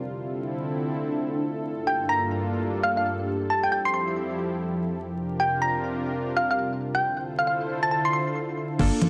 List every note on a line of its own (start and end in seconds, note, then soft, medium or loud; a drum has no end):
0.00 1.72 D3 medium
0.00 0.69 C4 medium
0.00 1.72 C4 medium
0.00 2.45 D4 medium
0.00 1.72 E4 medium
0.00 1.70 F4 medium
0.00 0.58 G4 medium
0.00 5.00 A4 medium
0.00 0.69 D5 medium
0.27 2.45 E5 medium
0.32 2.45 A4 medium
1.73 3.48 G2 medium
1.73 3.48 A#3 medium
1.73 3.48 D4 medium
1.73 3.48 F4 medium
1.73 4.13 G4 medium
1.87 1.98 G5 medium
2.09 2.20 A#5 medium
2.39 4.13 D5 medium
2.55 4.13 A5 medium
2.83 2.92 F5 medium
2.97 3.03 F5 medium
3.50 5.86 F3 medium
3.50 5.03 F3 medium
3.50 5.03 C4 medium
3.50 5.03 E4 medium
3.50 5.03 G4 medium
3.50 3.61 A5 medium
3.63 3.69 G5 medium
3.72 3.81 G5 medium
3.85 3.91 C6 medium
3.94 4.03 C6 medium
4.21 5.86 C5 medium
4.21 5.86 G5 medium
5.04 7.01 C3 medium
5.04 7.75 C4 medium
5.04 7.01 D4 medium
5.04 7.01 F4 medium
5.04 7.01 G4 medium
5.04 7.01 A#4 medium
5.40 5.51 G5 medium
5.62 5.73 A#5 medium
5.87 7.75 G4 medium
5.94 7.74 D5 medium
6.37 6.45 F5 medium
6.51 6.56 F5 medium
6.95 7.06 G5 medium
7.03 8.78 D3 medium
7.03 9.10 D4 medium
7.03 8.78 E4 medium
7.03 8.78 F4 medium
7.03 8.78 A4 medium
7.03 8.78 C5 medium
7.39 7.44 F5 medium
7.47 7.56 F5 medium
7.59 9.10 A5 medium
7.68 9.10 E5 medium
7.83 7.88 A5 medium
7.91 8.00 A5 medium
8.05 8.10 C6 medium
8.13 8.22 C6 medium
8.79 8.91 G1 loud
8.79 9.10 A#3 medium
8.79 9.10 D4 medium
8.79 9.10 F4 medium
8.79 9.10 G4 medium
8.79 9.10 A4 medium
8.79 9.10 A4 loud
8.79 kick loud
8.79 crash loud
9.02 closed hi-hat loud
9.02 high conga medium